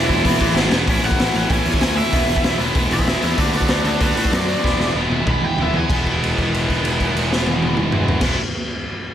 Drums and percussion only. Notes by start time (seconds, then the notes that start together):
0.09 kick
0.25 kick, open hi-hat
0.41 kick
0.56 snare
0.72 snare
0.88 kick, open hi-hat
1.04 open hi-hat
1.11 kick
1.20 snare, open hi-hat
1.35 open hi-hat
1.50 kick, open hi-hat
1.66 open hi-hat
1.74 kick
1.81 snare, open hi-hat
1.98 open hi-hat
2.13 kick, open hi-hat
2.30 open hi-hat
2.36 kick
2.44 snare, open hi-hat
2.59 open hi-hat
2.75 kick, open hi-hat
2.91 open hi-hat
2.99 kick
3.07 snare, open hi-hat
3.22 open hi-hat
3.38 kick, open hi-hat
3.54 open hi-hat
3.61 kick
3.68 snare, open hi-hat
3.85 open hi-hat
4.01 kick, open hi-hat
4.17 open hi-hat
4.25 kick
4.33 snare, open hi-hat
4.48 open hi-hat
4.64 kick, snare
4.80 snare
5.12 high tom
5.27 kick, mid tom
5.58 floor tom
5.74 floor tom
5.90 kick, crash
6.06 kick, crash
6.24 crash
6.38 kick, crash
6.54 crash
6.69 kick, crash
6.85 crash
7.00 kick, crash
7.17 crash
7.32 snare
7.46 high tom
7.62 high tom
7.77 mid tom
7.92 mid tom
8.08 floor tom
8.21 kick, snare, crash